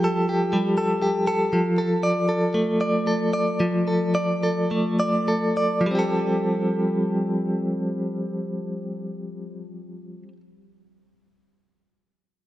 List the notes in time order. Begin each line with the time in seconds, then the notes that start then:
Already playing: F3 G3 C4 G4
0.04 A4
0.29 G4
0.53 G3
0.78 A4
1.02 G4
1.27 A4
1.53 F3
1.78 A4
2.03 D5
2.29 A4
2.54 A3
2.81 D5
3.07 A4
3.33 D5
3.60 F3
3.88 A4
4.15 D5
4.43 A4
4.71 A3
5.00 D5
5.28 A4
5.57 D5
5.81 F3
5.86 G3
5.91 C4
5.95 G4 A4